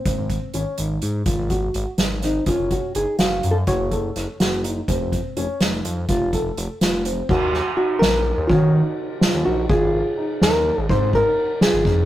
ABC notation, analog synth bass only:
X:1
M:5/8
L:1/16
Q:1/4=124
K:Ebdor
V:1 name="Analog synth bass" clef=bass
A,,, A,,,2 z A,,, z A,,,2 A,,2 | A,,, A,,,3 A,,, z A,,,4 | G,,, G,,,2 z G,,, z G,,,2 G,,2 | G,,, G,,,3 G,,, z G,,,4 |
F,,, F,,,2 z F,,, z F,,,2 F,,2 | F,,, F,,,3 F,,, z F,,,4 | E,, E,,2 z3 B,,,3 E,, | E, E,2 z4 E,, B,,,2 |
A,,, A,,,2 z3 E,,3 A,,, | A,, A,,2 z4 A,,, F,,2 |]